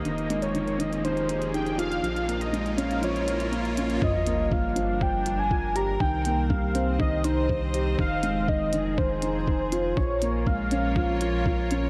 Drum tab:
HH |xxxxxxxxxxxxxxxx|xxxxxxxxxxxxxxxx|--x---x---x---x-|--x---x---x---x-|
BD |----------------|----------------|o---o---o---o---|o---o---o---o---|

HH |--x---x---x---x-|--x---x---x---x-|
BD |o---o---o---o---|o---o---o---o---|